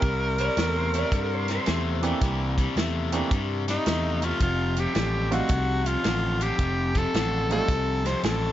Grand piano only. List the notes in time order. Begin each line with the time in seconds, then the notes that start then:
2.02 E3 A#3 C4 D4 G4
3.12 E3 A#3 C4 D4 G4
5.31 G3 A3 C4 D#4 F4
7.51 G3 A3 C4 D#4 F4